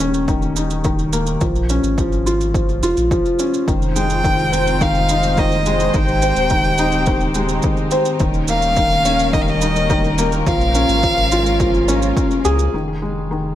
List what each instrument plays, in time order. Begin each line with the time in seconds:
Already playing: sub bass D#1, felt piano D#3 A#3
0.00 felt piano C#4
0.14 shaker
0.28 felt piano D#3, kick, shaker
0.42 shaker
0.56 felt piano D#4, shaker
0.70 shaker
0.84 felt piano D#3, kick, shaker
0.99 shaker
1.13 felt piano A#3, shaker
1.27 shaker
1.41 sub bass A#1, felt piano F3, kick, shaker
1.56 shaker
1.69 felt piano C#4, shaker
1.83 sub bass G#1, shaker
1.98 felt piano F3, kick, shaker
2.12 shaker
2.26 felt piano F4, shaker
2.41 shaker
2.54 felt piano F3, kick, shaker
2.69 shaker
2.83 sub bass F1, felt piano F4, shaker
2.97 sub bass A#1, shaker
3.11 felt piano F3, kick, shaker
3.25 shaker
3.39 felt piano C#4, shaker
3.54 shaker
3.66 sub bass F1, felt piano D#3, string section G#3 C4 D#4 F4 C5, kick, shaker
3.82 shaker
3.96 felt piano G#3, violin G5, shaker
4.10 shaker
4.24 felt piano D#3, kick, shaker
4.39 shaker
4.53 felt piano C4, shaker
4.67 shaker
4.81 felt piano D#3, violin F5, kick, shaker
4.95 shaker
5.09 felt piano D#4, shaker
5.23 shaker
5.37 felt piano D#3, violin D#5, kick, shaker
5.52 shaker
5.66 felt piano G#3, shaker
5.80 shaker
5.94 sub bass G#1, felt piano D#3, string section C4 D#4 G4, violin G5, kick, shaker
6.08 shaker
6.22 felt piano C4, shaker
6.36 sub bass D#1, shaker
6.50 felt piano D#3, kick, shaker
6.64 shaker
6.78 felt piano D#4, shaker
6.92 shaker
7.06 felt piano D#3, kick, shaker
7.21 shaker
7.35 felt piano G#3, shaker
7.49 shaker
7.63 felt piano D#3, kick, shaker
7.77 shaker
7.91 felt piano C4, shaker
8.05 shaker
8.19 sub bass D#1, felt piano D#3, string section G3 A#3 C#4 A#4, kick, shaker
8.34 shaker
8.48 felt piano A#3, violin F5, shaker
8.62 shaker
8.77 felt piano D#3, kick, shaker
8.91 shaker
9.05 felt piano C#4, shaker
9.19 shaker
9.33 felt piano D#3, violin D#5, kick, shaker
9.42 violin F5
9.48 violin D#5, shaker
9.61 felt piano D#4, shaker
9.76 shaker
9.90 felt piano D#3, kick, shaker
10.04 shaker
10.18 felt piano A#3, shaker
10.32 shaker
10.46 sub bass A#1, felt piano F3, string section G#3 C#4 F4, violin F5, kick, shaker
10.61 shaker
10.75 felt piano C#4, shaker
10.89 sub bass G#1, shaker
11.03 felt piano F3, kick, shaker
11.17 shaker
11.32 felt piano F4, shaker
11.46 shaker
11.60 felt piano F3, kick, shaker
11.74 shaker
11.88 felt piano C#4, shaker
12.02 shaker
12.17 felt piano C#4, kick, shaker
12.31 shaker
12.45 sub bass C#2, felt piano G#4, shaker
12.59 shaker
12.72 sub bass F1, felt piano D#3, string section G#3 C4 D#4 F4 C5
13.02 felt piano G#3
13.31 felt piano D#3